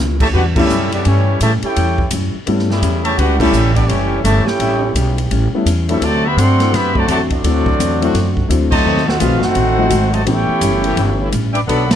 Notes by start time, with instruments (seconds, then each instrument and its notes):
Already playing: upright bass C#2, hollow-body jazz guitar A2
0.00 hollow-body jazz guitar G3 C#4 E4
0.20 trombone section C#3 E3 A3, trumpet section G4 C#5 E5 A5, kick, crash
0.33 upright bass E2, hollow-body jazz guitar A2 G3 C#4 E4, trumpet section D4 G4 B4 F#5, trombone section F#4
0.56 trombone section C#3 G3 A3 C#4 E4 G4, grand piano G3 A3 B3 C#4 E4, trumpet section C#4 G4 A4 E5, kick, crash
0.70 upright bass F#2, hollow-body jazz guitar A2 G3 C#4 E4, hi-hat pedal
0.92 trumpet section B3 E4 G4 D5, trombone section D4, ride
1.05 upright bass G2, hollow-body jazz guitar A2 G3 C#4 E4, trombone section E3 G3 C#4, trumpet section A3 E4 G4 C#5, ride
1.41 upright bass A2, hollow-body jazz guitar A2 G3 C#4 E4, trombone section C#3 E3 A3, trumpet section G4 C#5 E5 A5, hi-hat pedal, ride
1.62 trombone section C#4 E4 G4, trumpet section E4 A4 C#5 G5, muted upright bass stroke, ride
1.76 upright bass E2, hollow-body jazz guitar A2 G3 C#4 E4, ride
1.98 kick
2.11 upright bass F#2, hollow-body jazz guitar A2 G3 C#4 E4, hi-hat pedal, ride
2.34 muted upright bass stroke
2.46 upright bass G2, hollow-body jazz guitar A2 G3 C#4 E4, grand piano G3 A3 B3 C#4 E4, ride
2.59 snare
2.70 trombone section C#3 G3 A3 E4, snare
2.82 upright bass E2, hollow-body jazz guitar A2 G3 C#4 E4, hi-hat pedal, ride
3.04 trombone section C#3 E3 A3, trumpet section G4 C#5 E5 A5, ride
3.17 upright bass C#2, hollow-body jazz guitar A2 G3 C#4 E4, trumpet section D4 G4 B4 F#5, trombone section F#4, ride
3.39 trombone section C#3 G3 A3 C#4 E4, grand piano G3 A3 B3 C#4 E4, trumpet section C#4 G4 A4 E5, kick, crash
3.53 upright bass A1, hollow-body jazz guitar A2 G3 C#4 E4, hi-hat pedal
3.74 trumpet section B3 E4 G4 D5, trombone section D4, kick, ride
3.87 upright bass F#1, hollow-body jazz guitar A2 G3, trombone section E3 G3 C#4, trumpet section A3 E4 G4 C#5, ride
3.91 hollow-body jazz guitar C#4 E4
4.23 upright bass G1, hollow-body jazz guitar A2 G3 C#4 E4, trombone section C#3 E3 A3, trumpet section G4 C#5 E5 A5, hi-hat pedal, ride
4.45 trombone section C#4 E4 G4, trumpet section E4 A4 C#5 G5, muted upright bass stroke, snare
4.59 upright bass A1, hollow-body jazz guitar A2 G3 C#4 E4, trombone section C#3 G3 A3 E4, ride
4.94 upright bass B1, hollow-body jazz guitar A2 G3 C#4 E4, trombone section C#3 G3 A3 G4, hi-hat pedal, ride
5.18 ride
5.31 upright bass A1, hollow-body jazz guitar A2 G3 C#4 E4, ride
5.53 grand piano G3 A3 B3 C#4 E4, muted upright bass stroke
5.66 upright bass E2, hollow-body jazz guitar A2 G3 C#4 E4, hi-hat pedal, ride
5.88 grand piano F#3 A3 C4 D4 E4, trombone section G3 C#4 E4, trumpet section C#4 G4 A4 E5, ride
6.01 upright bass D2, trombone section C3 F#3 A3, hollow-body jazz guitar D3 A3 C4 F#4, trumpet section F#4 C5 D5 A5, ride
6.25 trombone section B3, trumpet section G4 C5 E5 B5
6.37 upright bass G2, hollow-body jazz guitar D3 A3 C4 F#4, trombone section F#3 A3 C4, trumpet section A4 D5 F#5 C6, hi-hat pedal, ride
6.60 grand piano F#3 A3 C4 D4 E4, snare, ride
6.73 upright bass F#2, hollow-body jazz guitar D3 A3 C4 F#4, trombone section B3, trumpet section G4 C5 E5 B5, snare, ride
6.95 trombone section C3 D3 F#3 A3 C4 F#4, trumpet section F#4 C5 D5 A5, kick
7.08 upright bass E2, trombone section C3 F#3 A3, hollow-body jazz guitar D3 A3 C4 F#4, trumpet section F#4 C5 D5 A5, hi-hat pedal, ride
7.30 trombone section F#3 A3 D4, trumpet section C4 F#4 A4 D5, kick, ride
7.43 upright bass D2, hollow-body jazz guitar D3 A3 C4 F#4, grand piano F#3 A3 C4 D4 E4, ride
7.66 kick
7.79 upright bass E2, hollow-body jazz guitar D3 A3 C4 F#4, hi-hat pedal, ride
8.01 trombone section D3 A3 C4 F#4, grand piano F#3 A3 C4 D4 E4, ride
8.14 upright bass F#2, hollow-body jazz guitar D3 A3 C4 F#4, snare, ride
8.37 kick
8.48 upright bass D2, hollow-body jazz guitar D3 A3 C4 F#4, grand piano F#3 A3 C4 D4 E4, hi-hat pedal, ride
8.71 trombone section C3 F#3 A3, trumpet section F#4 C5 D#5 A5, kick, crash
8.84 upright bass D#2, hollow-body jazz guitar D#3 A3 C4 F#4, trombone section D#3 A3 C4 F#4
8.97 snare
9.06 trombone section A3 C4 F#4, trumpet section D#4 A4 C5 F#5, snare
9.17 upright bass B1, hollow-body jazz guitar D#3 A3 C4 F#4, grand piano F3 A3 C4, trumpet section D4 G#4 B4 F5, trombone section F4, hi-hat pedal, ride
9.21 grand piano D#4 F#4
9.32 upright bass A1
9.39 trombone section A3 C4 F#4, trumpet section D#4 A4 C5 F#5, snare
9.43 upright bass F#1
9.55 upright bass A1, hollow-body jazz guitar D#3 A3 C4 F#4, ride
9.77 trombone section D#3 A3 C4 F#4, grand piano F3 A3 C4 D#4 F#4
9.90 upright bass G#1, hollow-body jazz guitar D#3 A3 C4 F#4, hi-hat pedal, ride
10.10 trombone section C3 F#3 A3, trumpet section F#4 C5 D#5 A5, ride
10.24 upright bass A1, hollow-body jazz guitar A2 G3 C#4, grand piano E3 A3 B3 C#4 G4, trombone section C#4 E4 G4, trumpet section E4 A4 C#5 G5, ride
10.28 hollow-body jazz guitar E4
10.49 muted upright bass stroke
10.61 upright bass F#1, hollow-body jazz guitar A2 G3 C#4 E4, hi-hat pedal, ride
10.84 trombone section E3 A3 C#4 G4, ride
10.97 upright bass G1, hollow-body jazz guitar A2 G3 C#4 E4, ride
11.20 trombone section E3 A3 C#4 E4
11.32 upright bass A1, hollow-body jazz guitar A2 G3 C#4 E4, hi-hat pedal, ride
11.53 trombone section D4, trumpet section B4 E5 G5 D6, ride
11.66 upright bass B1, hollow-body jazz guitar B2 A3 D4 F#4, trombone section D3 F#3 B3 D4 A4, trumpet section A4 D5 F#5 B5, ride
11.88 trombone section D3 F#3 A3, trumpet section F#4 D5, snare, ride
11.92 trumpet section A5